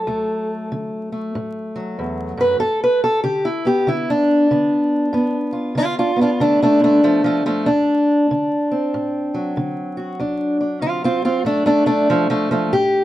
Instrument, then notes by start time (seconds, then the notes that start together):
steel-string acoustic guitar
Already playing: F#3 A4
0.07 D2 A3
0.72 D3
1.12 A3
1.35 A2
1.76 F#3
1.99 E2
2.37 F#2 B4
2.60 G2 A4
2.84 B4
3.04 A4
3.24 D3 G4
3.45 E4
3.65 B3 G4
3.87 D3 E4
4.10 D4
4.51 D3 B3
5.13 G2 B3
5.53 F4
5.75 D3 D4 F4
5.99 D4 F4
6.16 B3
6.21 D4 F4
6.40 D3 A3 D4
6.62 A3 D4
6.80 D3 A3
6.84 D4
7.04 F3 A3
7.24 F3 A3
7.46 F3 A3
7.66 D2 D4
8.31 D3
8.72 C4
8.94 A2
9.34 F#3
9.57 D3
9.97 F#4
10.19 D2 D4
10.61 D4
10.81 D3 C4 F4
11.04 C4 F4
11.25 C4 F4
11.45 A2 A3 D4
11.66 A3 D4
11.86 A3 D4
12.10 F3 A3
12.30 F3 A3
12.51 F3 A3
12.73 A2 G4